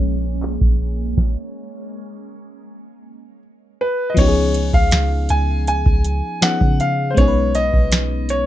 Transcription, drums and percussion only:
0, 0, Header, 1, 2, 480
1, 0, Start_track
1, 0, Tempo, 750000
1, 750, Time_signature, 4, 2, 24, 8
1, 5416, End_track
2, 0, Start_track
2, 0, Title_t, "Drums"
2, 273, Note_on_c, 9, 39, 119
2, 337, Note_off_c, 9, 39, 0
2, 392, Note_on_c, 9, 36, 105
2, 456, Note_off_c, 9, 36, 0
2, 512, Note_on_c, 9, 42, 55
2, 576, Note_off_c, 9, 42, 0
2, 751, Note_on_c, 9, 36, 105
2, 754, Note_on_c, 9, 38, 95
2, 815, Note_off_c, 9, 36, 0
2, 818, Note_off_c, 9, 38, 0
2, 2668, Note_on_c, 9, 42, 52
2, 2669, Note_on_c, 9, 49, 108
2, 2670, Note_on_c, 9, 36, 108
2, 2732, Note_off_c, 9, 42, 0
2, 2733, Note_off_c, 9, 49, 0
2, 2734, Note_off_c, 9, 36, 0
2, 2908, Note_on_c, 9, 42, 60
2, 2972, Note_off_c, 9, 42, 0
2, 3030, Note_on_c, 9, 36, 99
2, 3094, Note_off_c, 9, 36, 0
2, 3145, Note_on_c, 9, 42, 72
2, 3151, Note_on_c, 9, 38, 121
2, 3209, Note_off_c, 9, 42, 0
2, 3215, Note_off_c, 9, 38, 0
2, 3386, Note_on_c, 9, 42, 64
2, 3450, Note_off_c, 9, 42, 0
2, 3632, Note_on_c, 9, 42, 61
2, 3696, Note_off_c, 9, 42, 0
2, 3750, Note_on_c, 9, 36, 102
2, 3814, Note_off_c, 9, 36, 0
2, 3869, Note_on_c, 9, 42, 72
2, 3933, Note_off_c, 9, 42, 0
2, 4110, Note_on_c, 9, 42, 73
2, 4111, Note_on_c, 9, 38, 124
2, 4174, Note_off_c, 9, 42, 0
2, 4175, Note_off_c, 9, 38, 0
2, 4230, Note_on_c, 9, 36, 113
2, 4294, Note_off_c, 9, 36, 0
2, 4352, Note_on_c, 9, 42, 58
2, 4416, Note_off_c, 9, 42, 0
2, 4591, Note_on_c, 9, 36, 109
2, 4591, Note_on_c, 9, 42, 54
2, 4655, Note_off_c, 9, 36, 0
2, 4655, Note_off_c, 9, 42, 0
2, 4830, Note_on_c, 9, 42, 63
2, 4894, Note_off_c, 9, 42, 0
2, 4950, Note_on_c, 9, 36, 93
2, 5014, Note_off_c, 9, 36, 0
2, 5066, Note_on_c, 9, 42, 72
2, 5072, Note_on_c, 9, 38, 120
2, 5130, Note_off_c, 9, 42, 0
2, 5136, Note_off_c, 9, 38, 0
2, 5305, Note_on_c, 9, 42, 63
2, 5369, Note_off_c, 9, 42, 0
2, 5416, End_track
0, 0, End_of_file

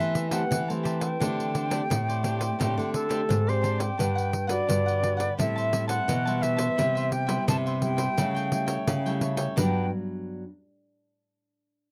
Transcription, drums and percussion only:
0, 0, Header, 1, 2, 480
1, 0, Start_track
1, 0, Key_signature, 1, "major"
1, 0, Tempo, 697674
1, 830, Time_signature, 4, 2, 24, 8
1, 8196, End_track
2, 0, Start_track
2, 0, Title_t, "Pandeiro"
2, 3, Note_on_c, 9, 54, 31
2, 72, Note_off_c, 9, 54, 0
2, 103, Note_on_c, 9, 54, 59
2, 172, Note_off_c, 9, 54, 0
2, 216, Note_on_c, 9, 54, 67
2, 285, Note_off_c, 9, 54, 0
2, 355, Note_on_c, 9, 54, 81
2, 424, Note_off_c, 9, 54, 0
2, 482, Note_on_c, 9, 54, 32
2, 550, Note_off_c, 9, 54, 0
2, 587, Note_on_c, 9, 54, 54
2, 656, Note_off_c, 9, 54, 0
2, 697, Note_on_c, 9, 54, 65
2, 766, Note_off_c, 9, 54, 0
2, 836, Note_on_c, 9, 54, 68
2, 904, Note_off_c, 9, 54, 0
2, 964, Note_on_c, 9, 54, 35
2, 1032, Note_off_c, 9, 54, 0
2, 1065, Note_on_c, 9, 54, 56
2, 1134, Note_off_c, 9, 54, 0
2, 1178, Note_on_c, 9, 54, 69
2, 1247, Note_off_c, 9, 54, 0
2, 1315, Note_on_c, 9, 54, 80
2, 1383, Note_off_c, 9, 54, 0
2, 1441, Note_on_c, 9, 54, 34
2, 1510, Note_off_c, 9, 54, 0
2, 1542, Note_on_c, 9, 54, 58
2, 1611, Note_off_c, 9, 54, 0
2, 1656, Note_on_c, 9, 54, 65
2, 1725, Note_off_c, 9, 54, 0
2, 1793, Note_on_c, 9, 54, 81
2, 1862, Note_off_c, 9, 54, 0
2, 1922, Note_on_c, 9, 54, 32
2, 1991, Note_off_c, 9, 54, 0
2, 2023, Note_on_c, 9, 54, 59
2, 2092, Note_off_c, 9, 54, 0
2, 2137, Note_on_c, 9, 54, 64
2, 2205, Note_off_c, 9, 54, 0
2, 2273, Note_on_c, 9, 54, 75
2, 2342, Note_off_c, 9, 54, 0
2, 2401, Note_on_c, 9, 54, 31
2, 2470, Note_off_c, 9, 54, 0
2, 2503, Note_on_c, 9, 54, 53
2, 2572, Note_off_c, 9, 54, 0
2, 2616, Note_on_c, 9, 54, 68
2, 2685, Note_off_c, 9, 54, 0
2, 2751, Note_on_c, 9, 54, 70
2, 2820, Note_off_c, 9, 54, 0
2, 2878, Note_on_c, 9, 54, 34
2, 2947, Note_off_c, 9, 54, 0
2, 2981, Note_on_c, 9, 54, 54
2, 3049, Note_off_c, 9, 54, 0
2, 3091, Note_on_c, 9, 54, 64
2, 3160, Note_off_c, 9, 54, 0
2, 3230, Note_on_c, 9, 54, 80
2, 3299, Note_off_c, 9, 54, 0
2, 3360, Note_on_c, 9, 54, 33
2, 3428, Note_off_c, 9, 54, 0
2, 3464, Note_on_c, 9, 54, 57
2, 3533, Note_off_c, 9, 54, 0
2, 3577, Note_on_c, 9, 54, 63
2, 3646, Note_off_c, 9, 54, 0
2, 3711, Note_on_c, 9, 54, 74
2, 3780, Note_off_c, 9, 54, 0
2, 3838, Note_on_c, 9, 54, 32
2, 3906, Note_off_c, 9, 54, 0
2, 3942, Note_on_c, 9, 54, 61
2, 4010, Note_off_c, 9, 54, 0
2, 4053, Note_on_c, 9, 54, 66
2, 4121, Note_off_c, 9, 54, 0
2, 4189, Note_on_c, 9, 54, 79
2, 4258, Note_off_c, 9, 54, 0
2, 4316, Note_on_c, 9, 54, 35
2, 4385, Note_off_c, 9, 54, 0
2, 4423, Note_on_c, 9, 54, 55
2, 4492, Note_off_c, 9, 54, 0
2, 4530, Note_on_c, 9, 54, 68
2, 4599, Note_off_c, 9, 54, 0
2, 4669, Note_on_c, 9, 54, 70
2, 4738, Note_off_c, 9, 54, 0
2, 4795, Note_on_c, 9, 54, 35
2, 4864, Note_off_c, 9, 54, 0
2, 4898, Note_on_c, 9, 54, 56
2, 4967, Note_off_c, 9, 54, 0
2, 5014, Note_on_c, 9, 54, 70
2, 5082, Note_off_c, 9, 54, 0
2, 5148, Note_on_c, 9, 54, 84
2, 5216, Note_off_c, 9, 54, 0
2, 5274, Note_on_c, 9, 54, 35
2, 5343, Note_off_c, 9, 54, 0
2, 5379, Note_on_c, 9, 54, 59
2, 5448, Note_off_c, 9, 54, 0
2, 5491, Note_on_c, 9, 54, 69
2, 5560, Note_off_c, 9, 54, 0
2, 5627, Note_on_c, 9, 54, 77
2, 5696, Note_off_c, 9, 54, 0
2, 5755, Note_on_c, 9, 54, 35
2, 5824, Note_off_c, 9, 54, 0
2, 5861, Note_on_c, 9, 54, 65
2, 5929, Note_off_c, 9, 54, 0
2, 5970, Note_on_c, 9, 54, 69
2, 6039, Note_off_c, 9, 54, 0
2, 6106, Note_on_c, 9, 54, 87
2, 6175, Note_off_c, 9, 54, 0
2, 6235, Note_on_c, 9, 54, 35
2, 6304, Note_off_c, 9, 54, 0
2, 6338, Note_on_c, 9, 54, 58
2, 6407, Note_off_c, 9, 54, 0
2, 6449, Note_on_c, 9, 54, 69
2, 6518, Note_off_c, 9, 54, 0
2, 6588, Note_on_c, 9, 54, 91
2, 6657, Note_off_c, 9, 54, 0
2, 8196, End_track
0, 0, End_of_file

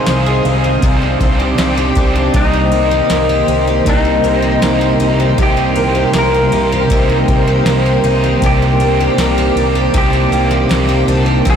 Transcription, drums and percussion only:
0, 0, Header, 1, 2, 480
1, 0, Start_track
1, 0, Key_signature, -3, "minor"
1, 0, Tempo, 759494
1, 1487, Time_signature, 4, 2, 24, 8
1, 7306, End_track
2, 0, Start_track
2, 0, Title_t, "Drums"
2, 41, Note_on_c, 9, 38, 117
2, 41, Note_on_c, 9, 51, 66
2, 43, Note_on_c, 9, 54, 72
2, 104, Note_off_c, 9, 51, 0
2, 105, Note_off_c, 9, 38, 0
2, 106, Note_off_c, 9, 54, 0
2, 285, Note_on_c, 9, 51, 39
2, 348, Note_off_c, 9, 51, 0
2, 521, Note_on_c, 9, 51, 55
2, 524, Note_on_c, 9, 36, 109
2, 584, Note_off_c, 9, 51, 0
2, 587, Note_off_c, 9, 36, 0
2, 762, Note_on_c, 9, 36, 98
2, 765, Note_on_c, 9, 51, 39
2, 825, Note_off_c, 9, 36, 0
2, 828, Note_off_c, 9, 51, 0
2, 1001, Note_on_c, 9, 38, 125
2, 1001, Note_on_c, 9, 54, 65
2, 1003, Note_on_c, 9, 51, 60
2, 1064, Note_off_c, 9, 38, 0
2, 1064, Note_off_c, 9, 54, 0
2, 1066, Note_off_c, 9, 51, 0
2, 1235, Note_on_c, 9, 51, 37
2, 1242, Note_on_c, 9, 36, 93
2, 1298, Note_off_c, 9, 51, 0
2, 1305, Note_off_c, 9, 36, 0
2, 1478, Note_on_c, 9, 51, 52
2, 1481, Note_on_c, 9, 36, 107
2, 1541, Note_off_c, 9, 51, 0
2, 1544, Note_off_c, 9, 36, 0
2, 1717, Note_on_c, 9, 51, 46
2, 1781, Note_off_c, 9, 51, 0
2, 1958, Note_on_c, 9, 38, 106
2, 1958, Note_on_c, 9, 51, 69
2, 1959, Note_on_c, 9, 54, 71
2, 2021, Note_off_c, 9, 51, 0
2, 2022, Note_off_c, 9, 38, 0
2, 2023, Note_off_c, 9, 54, 0
2, 2201, Note_on_c, 9, 51, 43
2, 2264, Note_off_c, 9, 51, 0
2, 2440, Note_on_c, 9, 51, 57
2, 2443, Note_on_c, 9, 36, 104
2, 2503, Note_off_c, 9, 51, 0
2, 2506, Note_off_c, 9, 36, 0
2, 2684, Note_on_c, 9, 51, 37
2, 2747, Note_off_c, 9, 51, 0
2, 2922, Note_on_c, 9, 38, 124
2, 2922, Note_on_c, 9, 54, 62
2, 2924, Note_on_c, 9, 51, 66
2, 2985, Note_off_c, 9, 38, 0
2, 2985, Note_off_c, 9, 54, 0
2, 2987, Note_off_c, 9, 51, 0
2, 3159, Note_on_c, 9, 51, 38
2, 3222, Note_off_c, 9, 51, 0
2, 3401, Note_on_c, 9, 51, 49
2, 3402, Note_on_c, 9, 36, 103
2, 3464, Note_off_c, 9, 51, 0
2, 3466, Note_off_c, 9, 36, 0
2, 3638, Note_on_c, 9, 51, 50
2, 3702, Note_off_c, 9, 51, 0
2, 3877, Note_on_c, 9, 51, 75
2, 3878, Note_on_c, 9, 38, 117
2, 3879, Note_on_c, 9, 54, 78
2, 3940, Note_off_c, 9, 51, 0
2, 3941, Note_off_c, 9, 38, 0
2, 3942, Note_off_c, 9, 54, 0
2, 4121, Note_on_c, 9, 51, 46
2, 4184, Note_off_c, 9, 51, 0
2, 4361, Note_on_c, 9, 51, 57
2, 4364, Note_on_c, 9, 36, 106
2, 4424, Note_off_c, 9, 51, 0
2, 4427, Note_off_c, 9, 36, 0
2, 4603, Note_on_c, 9, 36, 88
2, 4604, Note_on_c, 9, 51, 36
2, 4666, Note_off_c, 9, 36, 0
2, 4667, Note_off_c, 9, 51, 0
2, 4840, Note_on_c, 9, 38, 127
2, 4840, Note_on_c, 9, 54, 65
2, 4842, Note_on_c, 9, 51, 72
2, 4903, Note_off_c, 9, 38, 0
2, 4904, Note_off_c, 9, 54, 0
2, 4906, Note_off_c, 9, 51, 0
2, 5080, Note_on_c, 9, 51, 40
2, 5143, Note_off_c, 9, 51, 0
2, 5322, Note_on_c, 9, 51, 56
2, 5324, Note_on_c, 9, 36, 106
2, 5385, Note_off_c, 9, 51, 0
2, 5387, Note_off_c, 9, 36, 0
2, 5562, Note_on_c, 9, 51, 44
2, 5625, Note_off_c, 9, 51, 0
2, 5804, Note_on_c, 9, 38, 112
2, 5804, Note_on_c, 9, 51, 78
2, 5806, Note_on_c, 9, 54, 73
2, 5867, Note_off_c, 9, 51, 0
2, 5868, Note_off_c, 9, 38, 0
2, 5869, Note_off_c, 9, 54, 0
2, 6047, Note_on_c, 9, 51, 42
2, 6110, Note_off_c, 9, 51, 0
2, 6281, Note_on_c, 9, 51, 64
2, 6285, Note_on_c, 9, 36, 103
2, 6344, Note_off_c, 9, 51, 0
2, 6348, Note_off_c, 9, 36, 0
2, 6529, Note_on_c, 9, 51, 38
2, 6592, Note_off_c, 9, 51, 0
2, 6766, Note_on_c, 9, 38, 127
2, 6767, Note_on_c, 9, 54, 68
2, 6769, Note_on_c, 9, 51, 73
2, 6830, Note_off_c, 9, 38, 0
2, 6830, Note_off_c, 9, 54, 0
2, 6832, Note_off_c, 9, 51, 0
2, 7007, Note_on_c, 9, 51, 39
2, 7070, Note_off_c, 9, 51, 0
2, 7247, Note_on_c, 9, 36, 105
2, 7248, Note_on_c, 9, 51, 54
2, 7306, Note_off_c, 9, 36, 0
2, 7306, Note_off_c, 9, 51, 0
2, 7306, End_track
0, 0, End_of_file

